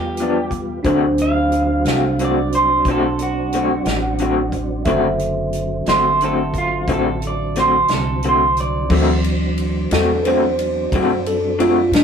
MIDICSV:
0, 0, Header, 1, 7, 480
1, 0, Start_track
1, 0, Tempo, 671141
1, 606, Time_signature, 12, 3, 24, 8
1, 8610, End_track
2, 0, Start_track
2, 0, Title_t, "Clean electric guitar"
2, 0, Program_c, 0, 27
2, 0, Note_on_c, 0, 67, 83
2, 369, Note_off_c, 0, 67, 0
2, 871, Note_on_c, 0, 77, 77
2, 1555, Note_off_c, 0, 77, 0
2, 1607, Note_on_c, 0, 74, 72
2, 1818, Note_off_c, 0, 74, 0
2, 1823, Note_on_c, 0, 72, 73
2, 2045, Note_off_c, 0, 72, 0
2, 2082, Note_on_c, 0, 69, 83
2, 2295, Note_off_c, 0, 69, 0
2, 2307, Note_on_c, 0, 66, 74
2, 3225, Note_off_c, 0, 66, 0
2, 4210, Note_on_c, 0, 72, 69
2, 4438, Note_off_c, 0, 72, 0
2, 4469, Note_on_c, 0, 69, 70
2, 4688, Note_off_c, 0, 69, 0
2, 4707, Note_on_c, 0, 65, 69
2, 4928, Note_off_c, 0, 65, 0
2, 4958, Note_on_c, 0, 69, 71
2, 5173, Note_off_c, 0, 69, 0
2, 5201, Note_on_c, 0, 74, 64
2, 5415, Note_off_c, 0, 74, 0
2, 5432, Note_on_c, 0, 72, 72
2, 5651, Note_off_c, 0, 72, 0
2, 5679, Note_on_c, 0, 69, 73
2, 5895, Note_off_c, 0, 69, 0
2, 5926, Note_on_c, 0, 72, 65
2, 6138, Note_off_c, 0, 72, 0
2, 6154, Note_on_c, 0, 74, 78
2, 6373, Note_off_c, 0, 74, 0
2, 8610, End_track
3, 0, Start_track
3, 0, Title_t, "Tine electric piano"
3, 0, Program_c, 1, 4
3, 0, Note_on_c, 1, 65, 57
3, 0, Note_on_c, 1, 69, 49
3, 0, Note_on_c, 1, 71, 64
3, 575, Note_off_c, 1, 65, 0
3, 577, Note_off_c, 1, 69, 0
3, 580, Note_off_c, 1, 71, 0
3, 593, Note_on_c, 1, 62, 56
3, 599, Note_on_c, 1, 66, 55
3, 607, Note_on_c, 1, 72, 65
3, 3445, Note_off_c, 1, 62, 0
3, 3448, Note_off_c, 1, 66, 0
3, 3452, Note_off_c, 1, 72, 0
3, 3469, Note_on_c, 1, 76, 56
3, 3472, Note_on_c, 1, 69, 51
3, 3482, Note_on_c, 1, 72, 59
3, 6330, Note_off_c, 1, 76, 0
3, 6332, Note_off_c, 1, 69, 0
3, 6337, Note_off_c, 1, 72, 0
3, 6365, Note_on_c, 1, 52, 47
3, 6371, Note_on_c, 1, 54, 40
3, 6376, Note_on_c, 1, 60, 49
3, 7058, Note_off_c, 1, 52, 0
3, 7061, Note_off_c, 1, 54, 0
3, 7064, Note_off_c, 1, 60, 0
3, 7106, Note_on_c, 1, 69, 73
3, 7316, Note_on_c, 1, 71, 49
3, 7330, Note_off_c, 1, 69, 0
3, 7342, Note_off_c, 1, 71, 0
3, 7342, Note_on_c, 1, 72, 70
3, 8035, Note_off_c, 1, 72, 0
3, 8061, Note_on_c, 1, 69, 67
3, 8288, Note_off_c, 1, 69, 0
3, 8297, Note_on_c, 1, 65, 66
3, 8527, Note_off_c, 1, 65, 0
3, 8541, Note_on_c, 1, 62, 78
3, 8610, Note_off_c, 1, 62, 0
3, 8610, End_track
4, 0, Start_track
4, 0, Title_t, "Clean electric guitar"
4, 0, Program_c, 2, 27
4, 145, Note_on_c, 2, 43, 48
4, 148, Note_on_c, 2, 53, 48
4, 154, Note_on_c, 2, 59, 53
4, 158, Note_on_c, 2, 62, 55
4, 280, Note_off_c, 2, 43, 0
4, 282, Note_off_c, 2, 53, 0
4, 284, Note_off_c, 2, 59, 0
4, 286, Note_off_c, 2, 62, 0
4, 614, Note_on_c, 2, 50, 73
4, 617, Note_on_c, 2, 57, 75
4, 618, Note_on_c, 2, 60, 77
4, 624, Note_on_c, 2, 66, 80
4, 753, Note_off_c, 2, 50, 0
4, 755, Note_off_c, 2, 57, 0
4, 756, Note_off_c, 2, 60, 0
4, 759, Note_off_c, 2, 66, 0
4, 1342, Note_on_c, 2, 66, 45
4, 1343, Note_on_c, 2, 60, 42
4, 1351, Note_on_c, 2, 57, 35
4, 1477, Note_off_c, 2, 60, 0
4, 1477, Note_off_c, 2, 66, 0
4, 1481, Note_off_c, 2, 57, 0
4, 1572, Note_on_c, 2, 50, 50
4, 1578, Note_on_c, 2, 57, 49
4, 1583, Note_on_c, 2, 60, 52
4, 1590, Note_on_c, 2, 66, 60
4, 1711, Note_off_c, 2, 50, 0
4, 1714, Note_off_c, 2, 57, 0
4, 1717, Note_off_c, 2, 60, 0
4, 1720, Note_off_c, 2, 66, 0
4, 2060, Note_on_c, 2, 50, 63
4, 2062, Note_on_c, 2, 60, 74
4, 2063, Note_on_c, 2, 57, 60
4, 2072, Note_on_c, 2, 66, 76
4, 2195, Note_off_c, 2, 50, 0
4, 2196, Note_off_c, 2, 57, 0
4, 2196, Note_off_c, 2, 60, 0
4, 2200, Note_off_c, 2, 66, 0
4, 2532, Note_on_c, 2, 50, 49
4, 2533, Note_on_c, 2, 57, 54
4, 2537, Note_on_c, 2, 66, 60
4, 2541, Note_on_c, 2, 60, 54
4, 2670, Note_off_c, 2, 50, 0
4, 2671, Note_off_c, 2, 57, 0
4, 2673, Note_off_c, 2, 66, 0
4, 2675, Note_off_c, 2, 60, 0
4, 3003, Note_on_c, 2, 50, 58
4, 3014, Note_on_c, 2, 57, 59
4, 3014, Note_on_c, 2, 60, 59
4, 3020, Note_on_c, 2, 66, 67
4, 3146, Note_off_c, 2, 50, 0
4, 3151, Note_off_c, 2, 57, 0
4, 3151, Note_off_c, 2, 60, 0
4, 3154, Note_off_c, 2, 66, 0
4, 3478, Note_on_c, 2, 50, 72
4, 3483, Note_on_c, 2, 57, 77
4, 3490, Note_on_c, 2, 60, 75
4, 3492, Note_on_c, 2, 66, 87
4, 3623, Note_off_c, 2, 50, 0
4, 3626, Note_off_c, 2, 57, 0
4, 3629, Note_off_c, 2, 60, 0
4, 3630, Note_off_c, 2, 66, 0
4, 4211, Note_on_c, 2, 66, 42
4, 4213, Note_on_c, 2, 60, 42
4, 4219, Note_on_c, 2, 57, 36
4, 4350, Note_off_c, 2, 66, 0
4, 4351, Note_off_c, 2, 60, 0
4, 4354, Note_off_c, 2, 57, 0
4, 4450, Note_on_c, 2, 50, 54
4, 4459, Note_on_c, 2, 57, 58
4, 4462, Note_on_c, 2, 60, 60
4, 4464, Note_on_c, 2, 66, 53
4, 4590, Note_off_c, 2, 50, 0
4, 4594, Note_off_c, 2, 57, 0
4, 4596, Note_off_c, 2, 60, 0
4, 4597, Note_off_c, 2, 66, 0
4, 4924, Note_on_c, 2, 50, 72
4, 4928, Note_on_c, 2, 57, 63
4, 4930, Note_on_c, 2, 60, 70
4, 4937, Note_on_c, 2, 66, 75
4, 5067, Note_off_c, 2, 50, 0
4, 5069, Note_off_c, 2, 57, 0
4, 5070, Note_off_c, 2, 60, 0
4, 5073, Note_off_c, 2, 66, 0
4, 5408, Note_on_c, 2, 50, 49
4, 5409, Note_on_c, 2, 57, 51
4, 5416, Note_on_c, 2, 60, 59
4, 5420, Note_on_c, 2, 66, 51
4, 5550, Note_off_c, 2, 50, 0
4, 5550, Note_off_c, 2, 57, 0
4, 5553, Note_off_c, 2, 60, 0
4, 5555, Note_off_c, 2, 66, 0
4, 5896, Note_on_c, 2, 50, 48
4, 5898, Note_on_c, 2, 57, 53
4, 5904, Note_on_c, 2, 60, 47
4, 5904, Note_on_c, 2, 66, 57
4, 6034, Note_off_c, 2, 50, 0
4, 6035, Note_off_c, 2, 57, 0
4, 6038, Note_off_c, 2, 60, 0
4, 6038, Note_off_c, 2, 66, 0
4, 6371, Note_on_c, 2, 50, 73
4, 6376, Note_on_c, 2, 57, 74
4, 6385, Note_on_c, 2, 60, 78
4, 6385, Note_on_c, 2, 66, 76
4, 6512, Note_off_c, 2, 50, 0
4, 6514, Note_off_c, 2, 57, 0
4, 6519, Note_off_c, 2, 60, 0
4, 6519, Note_off_c, 2, 66, 0
4, 7099, Note_on_c, 2, 66, 49
4, 7107, Note_on_c, 2, 60, 47
4, 7110, Note_on_c, 2, 57, 43
4, 7237, Note_off_c, 2, 66, 0
4, 7241, Note_off_c, 2, 60, 0
4, 7243, Note_off_c, 2, 57, 0
4, 7336, Note_on_c, 2, 50, 60
4, 7346, Note_on_c, 2, 57, 59
4, 7349, Note_on_c, 2, 60, 61
4, 7351, Note_on_c, 2, 66, 63
4, 7476, Note_off_c, 2, 50, 0
4, 7481, Note_off_c, 2, 57, 0
4, 7483, Note_off_c, 2, 60, 0
4, 7483, Note_off_c, 2, 66, 0
4, 7825, Note_on_c, 2, 50, 71
4, 7826, Note_on_c, 2, 57, 69
4, 7835, Note_on_c, 2, 60, 75
4, 7838, Note_on_c, 2, 66, 87
4, 7961, Note_off_c, 2, 50, 0
4, 7962, Note_off_c, 2, 57, 0
4, 7966, Note_off_c, 2, 60, 0
4, 7967, Note_off_c, 2, 66, 0
4, 8287, Note_on_c, 2, 50, 57
4, 8290, Note_on_c, 2, 57, 57
4, 8294, Note_on_c, 2, 60, 60
4, 8300, Note_on_c, 2, 66, 59
4, 8433, Note_off_c, 2, 50, 0
4, 8434, Note_off_c, 2, 57, 0
4, 8436, Note_off_c, 2, 60, 0
4, 8439, Note_off_c, 2, 66, 0
4, 8610, End_track
5, 0, Start_track
5, 0, Title_t, "Tonewheel organ"
5, 0, Program_c, 3, 16
5, 0, Note_on_c, 3, 55, 54
5, 0, Note_on_c, 3, 59, 56
5, 0, Note_on_c, 3, 65, 57
5, 568, Note_off_c, 3, 59, 0
5, 570, Note_off_c, 3, 65, 0
5, 573, Note_off_c, 3, 55, 0
5, 604, Note_on_c, 3, 60, 59
5, 608, Note_on_c, 3, 54, 56
5, 611, Note_on_c, 3, 62, 55
5, 3450, Note_off_c, 3, 60, 0
5, 3453, Note_off_c, 3, 54, 0
5, 3454, Note_off_c, 3, 62, 0
5, 3474, Note_on_c, 3, 50, 57
5, 3479, Note_on_c, 3, 54, 57
5, 3480, Note_on_c, 3, 60, 54
5, 6333, Note_off_c, 3, 50, 0
5, 6335, Note_off_c, 3, 54, 0
5, 6336, Note_off_c, 3, 60, 0
5, 6351, Note_on_c, 3, 60, 60
5, 6354, Note_on_c, 3, 62, 61
5, 6357, Note_on_c, 3, 54, 60
5, 8610, Note_off_c, 3, 54, 0
5, 8610, Note_off_c, 3, 60, 0
5, 8610, Note_off_c, 3, 62, 0
5, 8610, End_track
6, 0, Start_track
6, 0, Title_t, "Upright bass"
6, 0, Program_c, 4, 32
6, 0, Note_on_c, 4, 40, 71
6, 584, Note_off_c, 4, 40, 0
6, 604, Note_on_c, 4, 38, 77
6, 1301, Note_off_c, 4, 38, 0
6, 1323, Note_on_c, 4, 36, 85
6, 2020, Note_off_c, 4, 36, 0
6, 2036, Note_on_c, 4, 35, 72
6, 2736, Note_off_c, 4, 35, 0
6, 2755, Note_on_c, 4, 33, 80
6, 3456, Note_off_c, 4, 33, 0
6, 3471, Note_on_c, 4, 30, 74
6, 4174, Note_off_c, 4, 30, 0
6, 4192, Note_on_c, 4, 31, 78
6, 4895, Note_off_c, 4, 31, 0
6, 4919, Note_on_c, 4, 33, 73
6, 5620, Note_off_c, 4, 33, 0
6, 5644, Note_on_c, 4, 36, 79
6, 6344, Note_off_c, 4, 36, 0
6, 6362, Note_on_c, 4, 38, 80
6, 7064, Note_off_c, 4, 38, 0
6, 7089, Note_on_c, 4, 40, 88
6, 7788, Note_off_c, 4, 40, 0
6, 7811, Note_on_c, 4, 42, 80
6, 8510, Note_off_c, 4, 42, 0
6, 8521, Note_on_c, 4, 45, 80
6, 8610, Note_off_c, 4, 45, 0
6, 8610, End_track
7, 0, Start_track
7, 0, Title_t, "Drums"
7, 122, Note_on_c, 9, 42, 48
7, 193, Note_off_c, 9, 42, 0
7, 364, Note_on_c, 9, 36, 65
7, 367, Note_on_c, 9, 42, 50
7, 436, Note_off_c, 9, 36, 0
7, 438, Note_off_c, 9, 42, 0
7, 603, Note_on_c, 9, 42, 69
7, 605, Note_on_c, 9, 36, 100
7, 675, Note_off_c, 9, 42, 0
7, 676, Note_off_c, 9, 36, 0
7, 844, Note_on_c, 9, 42, 54
7, 915, Note_off_c, 9, 42, 0
7, 1086, Note_on_c, 9, 42, 50
7, 1157, Note_off_c, 9, 42, 0
7, 1326, Note_on_c, 9, 42, 75
7, 1337, Note_on_c, 9, 38, 87
7, 1398, Note_off_c, 9, 42, 0
7, 1408, Note_off_c, 9, 38, 0
7, 1566, Note_on_c, 9, 42, 58
7, 1638, Note_off_c, 9, 42, 0
7, 1806, Note_on_c, 9, 42, 58
7, 1877, Note_off_c, 9, 42, 0
7, 2038, Note_on_c, 9, 42, 70
7, 2039, Note_on_c, 9, 36, 90
7, 2109, Note_off_c, 9, 42, 0
7, 2111, Note_off_c, 9, 36, 0
7, 2279, Note_on_c, 9, 42, 53
7, 2351, Note_off_c, 9, 42, 0
7, 2521, Note_on_c, 9, 42, 58
7, 2593, Note_off_c, 9, 42, 0
7, 2757, Note_on_c, 9, 42, 68
7, 2767, Note_on_c, 9, 38, 90
7, 2828, Note_off_c, 9, 42, 0
7, 2839, Note_off_c, 9, 38, 0
7, 2993, Note_on_c, 9, 42, 51
7, 3064, Note_off_c, 9, 42, 0
7, 3235, Note_on_c, 9, 36, 64
7, 3236, Note_on_c, 9, 42, 45
7, 3306, Note_off_c, 9, 36, 0
7, 3307, Note_off_c, 9, 42, 0
7, 3469, Note_on_c, 9, 42, 68
7, 3474, Note_on_c, 9, 36, 93
7, 3541, Note_off_c, 9, 42, 0
7, 3545, Note_off_c, 9, 36, 0
7, 3715, Note_on_c, 9, 42, 49
7, 3786, Note_off_c, 9, 42, 0
7, 3953, Note_on_c, 9, 42, 49
7, 4025, Note_off_c, 9, 42, 0
7, 4193, Note_on_c, 9, 42, 65
7, 4204, Note_on_c, 9, 38, 94
7, 4265, Note_off_c, 9, 42, 0
7, 4275, Note_off_c, 9, 38, 0
7, 4439, Note_on_c, 9, 42, 53
7, 4510, Note_off_c, 9, 42, 0
7, 4676, Note_on_c, 9, 36, 67
7, 4679, Note_on_c, 9, 42, 52
7, 4747, Note_off_c, 9, 36, 0
7, 4751, Note_off_c, 9, 42, 0
7, 4918, Note_on_c, 9, 36, 87
7, 4918, Note_on_c, 9, 42, 68
7, 4989, Note_off_c, 9, 42, 0
7, 4990, Note_off_c, 9, 36, 0
7, 5163, Note_on_c, 9, 42, 48
7, 5234, Note_off_c, 9, 42, 0
7, 5403, Note_on_c, 9, 42, 58
7, 5414, Note_on_c, 9, 38, 27
7, 5475, Note_off_c, 9, 42, 0
7, 5486, Note_off_c, 9, 38, 0
7, 5638, Note_on_c, 9, 42, 71
7, 5648, Note_on_c, 9, 38, 82
7, 5709, Note_off_c, 9, 42, 0
7, 5720, Note_off_c, 9, 38, 0
7, 5883, Note_on_c, 9, 42, 52
7, 5954, Note_off_c, 9, 42, 0
7, 6127, Note_on_c, 9, 42, 53
7, 6198, Note_off_c, 9, 42, 0
7, 6365, Note_on_c, 9, 49, 94
7, 6366, Note_on_c, 9, 36, 109
7, 6437, Note_off_c, 9, 36, 0
7, 6437, Note_off_c, 9, 49, 0
7, 6611, Note_on_c, 9, 51, 59
7, 6682, Note_off_c, 9, 51, 0
7, 6849, Note_on_c, 9, 51, 56
7, 6920, Note_off_c, 9, 51, 0
7, 7088, Note_on_c, 9, 51, 70
7, 7099, Note_on_c, 9, 38, 102
7, 7159, Note_off_c, 9, 51, 0
7, 7170, Note_off_c, 9, 38, 0
7, 7331, Note_on_c, 9, 51, 58
7, 7402, Note_off_c, 9, 51, 0
7, 7572, Note_on_c, 9, 51, 56
7, 7643, Note_off_c, 9, 51, 0
7, 7811, Note_on_c, 9, 36, 102
7, 7813, Note_on_c, 9, 51, 73
7, 7883, Note_off_c, 9, 36, 0
7, 7885, Note_off_c, 9, 51, 0
7, 8055, Note_on_c, 9, 51, 53
7, 8127, Note_off_c, 9, 51, 0
7, 8296, Note_on_c, 9, 51, 65
7, 8368, Note_off_c, 9, 51, 0
7, 8534, Note_on_c, 9, 51, 78
7, 8545, Note_on_c, 9, 38, 99
7, 8606, Note_off_c, 9, 51, 0
7, 8610, Note_off_c, 9, 38, 0
7, 8610, End_track
0, 0, End_of_file